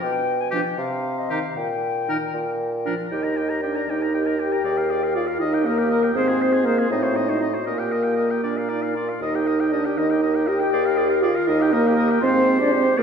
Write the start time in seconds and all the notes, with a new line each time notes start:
0.01 B2 G5
0.41 G#5
0.51 F3 D4 G4 G5
0.78 C3 F5
1.18 D#5
1.29 D#3 D#4 G4 F5
1.56 A#2 G5
2.08 D#3 D#4 A#4
2.34 A#2
2.85 F3 D4 A#4
3.11 D#2 D#4 G4 D#5 G5
3.23 A#4 A#5
3.37 G4 G5
3.49 A#4 A#5
3.62 D4 G4 D5 G5
3.76 A#4 A#5
3.88 D#2 D#4 G4 D#5 G5
4.01 A#4 A#5
4.13 G4 G5
4.25 A#4 A#5
4.39 G4 G5
4.52 A#4 A#5
4.64 D#2 G#4 D5
4.76 A#4 F5
4.90 G#4 D5
5.02 A#4 F5
5.14 F4 G#4 D5 F5
5.27 A#4 F5
5.40 D#2 D#4 A#4 D#5
5.53 G4 G5
5.65 A#3 A#4 D#5
5.78 G4 G5
5.91 A#4 D#5
6.03 G4 G5
6.15 G#2 C4 G#4 C5
6.28 F4 G#4
6.41 G#4 C5
6.52 F4 G#4
6.65 A#3 G#4 A#4 C5
6.79 F4 G#4
6.90 A2 C4 D#4 C5 D#5
7.03 F#4 C5
7.14 D#4 D#5
7.28 D#4 F#4 C5 D#5
7.40 D#4 D#5
7.53 F#4 C5
7.66 A#2 A#3 A#4 D#5
7.79 G4 G5
7.92 A#4 D#5
8.03 G4 G5
8.17 A#4 D#5
8.30 G4 G5
8.43 A#2 D4 D5
8.57 F5
8.69 D#4 D5
8.82 F5
8.96 F4 D5
9.09 F5
9.21 D#2 D#4 A#4 D#5
9.35 G4 G5
9.47 A#4 D#5
9.60 G4 G5
9.72 D4 A#4 D5 D#5
9.85 G4 G5
9.96 D#2 D#4 A#4 D#5
10.10 G4 G5
10.23 A#4 D#5
10.35 G4 G5
10.47 G4 A#4 D#5 G5
10.60 G4 G5
10.72 D#2 G#4 D5
10.85 A#4 F5
10.97 G#4 D5
11.09 A#4 F5
11.22 F4 G#4 D5 F5
11.35 A#4 F5
11.46 D#2 D#4 A#4 D#5
11.59 G4 G5
11.72 A#3 A#4 D#5
11.84 G4 G5
11.96 A#4 D#5
12.08 G4 G5
12.20 G#2 C4 F4 C5
12.59 D4 G4 D5
12.72 C4 C5
12.98 A#2 A#3 G#4 A#4 D5